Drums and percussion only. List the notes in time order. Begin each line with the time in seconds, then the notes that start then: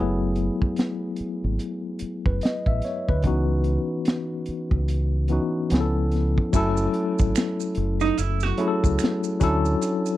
0.36 closed hi-hat
0.62 kick
0.76 snare, closed hi-hat
1.16 closed hi-hat
1.59 closed hi-hat
1.99 closed hi-hat
2.26 kick
2.41 snare, closed hi-hat
2.66 kick
2.82 snare, closed hi-hat
3.09 kick
3.22 kick, closed hi-hat
3.64 closed hi-hat
4.05 snare, closed hi-hat
4.46 closed hi-hat
4.71 kick
4.88 closed hi-hat
5.28 closed hi-hat
5.70 snare, closed hi-hat
6.11 snare, closed hi-hat
6.38 kick
6.53 kick, crash, maracas
6.77 maracas
6.94 closed hi-hat
7.19 kick, maracas
7.35 finger snap, snare, closed hi-hat, maracas
7.60 maracas
7.75 closed hi-hat
8.00 snare, maracas
8.17 closed hi-hat, maracas
8.40 maracas
8.45 snare
8.58 closed hi-hat
8.84 kick, maracas
8.99 finger snap, closed hi-hat, maracas
9.04 snare
9.24 maracas
9.41 kick, snare, closed hi-hat, maracas
9.65 maracas
9.82 closed hi-hat, maracas
10.06 maracas